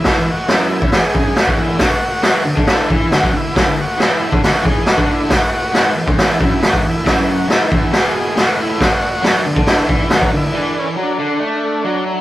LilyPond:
<<
  \new Staff \with { instrumentName = "Transistor combo organ" } { \time 4/4 \key d \lydian \tempo 4 = 137 r1 | r1 | r1 | <e' gis' b'>8 <e' gis' b'>8 <e' gis' b'>8 <e' gis' b'>8 <e' gis' b'>8 <e' gis' d''>8 <e' gis' b'>8 <e' gis' b'>8 |
<e' gis' d''>8 <e' gis' b'>8 <e' gis' b'>8 <e' gis' b'>8 <e' cis''>8 <e' gis' b'>8 <e' gis' b'>8 <e' gis' b'>8 | <d' a' d''>8 <d' a' d''>8 <d' a' d''>8 <d' a' d''>8 <d' a' d''>8 <d' a' d''>8 <d' a' d''>8 <d' a' d''>8 | <d' a' d''>8 <d' a' d''>8 <d' a' d''>8 <d' a' d''>8 <d' a' d''>8 <d' a' d''>8 <d' a' d''>8 <d' a' e''>8 | }
  \new Staff \with { instrumentName = "Transistor combo organ" } { \time 4/4 \key d \lydian e'8 fis'8 e'4 gis'8 gis'8 fis'8 e'8 | fis'4. r8 e'8 e'8 fis'8 e'8 | e'8 fis'8 e'4 fis'8 gis'8 fis'8 e'8 | fis'4. r8 e'8 e'8 fis'8 e'8 |
e'8 fis'8 e'4 gis'8 gis'8 fis'8 e'8 | fis'4. r8 e'8 e'8 fis'8 e'8 | d'8 cis'8 d'4 d'4. r8 | }
  \new Staff \with { instrumentName = "Overdriven electric guitar" } { \clef bass \time 4/4 \key d \lydian a,16 e,8 r16 fis,8. e,16 e,16 r16 fis,8 r16 e,8. | d16 r8. fis8 d16 d8. e8 d16 fis16 d8 | fis16 d8 r16 e8. d16 d16 r16 e8 r16 d8. | e,16 r8. gis,8 e,16 e,8. fis,8 e,16 gis,16 e,8 |
fis,4 gis,8 e,8 b,4 a,4 | d16 r8. fis8 d16 d8. e8 d16 fis16 d8 | e4 fis8 d8 a4 fis4 | }
  \new DrumStaff \with { instrumentName = "Drums" } \drummode { \time 4/4 <hho bd sn>4 <hho sn>8. bd16 <hho sn>8 bd8 <hho sn>16 bd8. | <hho bd sn>4 <hho sn>8. bd16 <hho sn>8 bd8 <hho sn>16 bd8. | <hho bd sn>4 <hho sn>8. bd16 <hho sn>8 bd8 <hho sn>16 bd8. | <hho bd sn>4 <hho sn>8. bd16 <hho sn>8 bd8 <hho sn>16 bd8. |
<hho bd sn>4 <hho sn>8 bd8 <hho sn>4 <hho sn>4 | <hho bd sn>4 <hho sn>8. bd16 <hho sn>8 bd8 <hho sn>16 bd8. | r4 r4 r4 r4 | }
>>